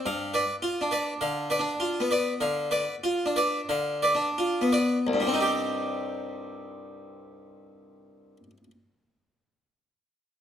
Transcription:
<<
  \new Staff \with { instrumentName = "Harpsichord" } { \time 4/4 \key c \minor \tempo 4 = 45 f''16 <b' d''>16 f'16 <b' d''>16 f''16 <b' d''>16 f'16 <b' d''>16 f''16 <b' d''>16 f'16 <b' d''>16 f''16 <b' d''>16 f'16 <b' d''>16 | <c, g, g c' ees' g'>1 | }
  \new Staff \with { instrumentName = "Harpsichord" } { \time 4/4 \key c \minor \tuplet 3/2 { g,8 r8 d'8 d8 d'8 b8 d8 r8 d'8 d8 d'8 b8 } | r1 | }
>>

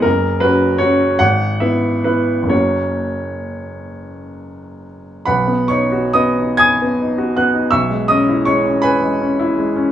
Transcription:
\new Staff \with { instrumentName = "Grand piano" } { \time 6/8 \key b \major \tempo 4. = 49 << { ais'8 b'8 cis''8 fis''8 e''8 b'8 | cis''2~ cis''8 r8 | <b' fis'' b''>8 <cis'' cis'''>8 <dis'' dis'''>8 <gis'' dis''' gis'''>4 <fis'' fis'''>8 | <e'' cis''' e'''>8 <dis'' dis'''>8 <cis'' cis'''>8 <b' gis'' b''>4. | } \\ { fis,,8 <fis cis' fis'>8 <fis cis' fis'>8 gis,,8 <b e'>8 <b e'>8 | <fis,, ais cis' fis'>2. | b,,16 b16 dis'16 fis'16 b16 dis'8 b16 dis'16 fis'16 b16 dis'16 | b,,16 gis16 cis'16 e'16 gis16 cis'8 gis16 cis'16 e'16 gis16 cis'16 | } >> }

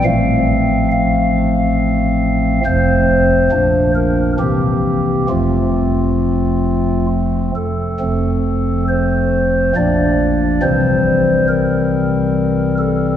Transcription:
<<
  \new Staff \with { instrumentName = "Pipe organ" } { \time 3/4 \key f \major \tempo 4 = 69 f''4 f''2 | c''4. bes'8 g'4 | f'2 r8 a'8~ | a'4 c''4 d''4 |
c''4 bes'4. a'8 | }
  \new Staff \with { instrumentName = "Pipe organ" } { \clef bass \time 3/4 \key f \major <a,, a, f a c'>2. | <f,, f, f a c'>4 <bes,, bes, f bes d'>4 <c, c e bes c'>4 | <f,, f, f a c'>2~ <f,, f, f a c'>8 r8 | <f,, f, f a c'>2 <bes,, bes, f bes d'>4 |
<c, c e g c'>2. | }
>>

